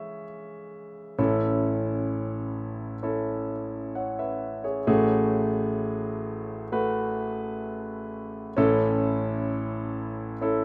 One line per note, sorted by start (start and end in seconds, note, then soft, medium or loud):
0.00 1.14 C#3 medium
0.00 1.15 E3 medium
0.00 1.15 G#3 medium
0.00 1.21 E5 medium
1.19 4.84 A1 medium
1.19 4.84 A2 medium
1.19 2.94 C#4 medium
1.19 2.94 E4 medium
1.19 2.94 A4 medium
3.03 4.78 C#4 medium
3.03 4.79 E4 medium
3.03 3.50 A4 medium
3.95 4.18 C#5 soft
3.95 4.17 F#5 soft
4.19 4.63 B4 soft
4.19 4.63 E5 medium
4.64 4.86 G#4 soft
4.64 5.08 C#5 medium
4.87 8.53 A1 medium
4.87 8.53 A2 medium
4.87 6.63 A3 medium
4.87 6.63 F#4 medium
4.87 6.63 G#4 medium
6.72 8.48 A3 medium
6.72 8.48 F#4 medium
6.72 8.48 B4 medium
8.57 10.64 A1 medium
8.57 10.64 A2 medium
8.57 10.32 C#4 medium
8.57 10.33 E4 medium
8.57 10.33 A4 medium
10.41 10.64 C#4 medium
10.41 10.64 E4 medium
10.41 10.64 A4 medium